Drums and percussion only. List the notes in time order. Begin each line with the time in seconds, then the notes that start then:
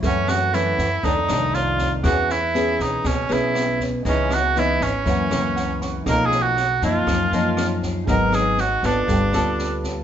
0.03 kick, snare
0.28 cross-stick, snare
0.53 snare
0.78 kick, snare
1.03 kick, snare
1.28 cross-stick, snare
1.54 snare
1.79 kick, snare
2.04 kick, cross-stick, snare
2.29 snare
2.54 snare
2.79 kick, snare
3.05 kick, cross-stick, snare
3.30 snare
3.55 cross-stick, snare
3.80 kick, snare
4.05 kick, snare
4.30 cross-stick, snare
4.56 snare
4.81 kick, snare
5.06 kick, snare
5.31 cross-stick, snare
5.56 snare
5.81 kick, snare
6.06 kick, cross-stick, snare
6.31 snare
6.57 snare
6.82 kick, snare
7.07 kick, cross-stick, snare
7.32 snare
7.57 cross-stick, snare
7.82 kick, snare
8.07 kick, snare
8.32 cross-stick, snare
8.58 snare
8.83 kick, snare
9.08 kick, snare
9.33 cross-stick, snare
9.59 snare
9.84 kick, snare